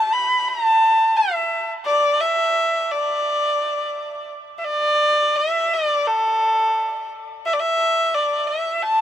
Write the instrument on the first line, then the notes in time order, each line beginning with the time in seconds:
erhu
Already playing: A5
0.13 B5
0.48 A5
1.17 E5
1.85 D5
2.21 E5
2.92 D5
4.58 E5
4.65 D5
5.36 E5
5.73 D5
6.07 A4
7.46 E5
7.53 D5
7.60 E5
8.14 D5
8.47 E5
8.82 A5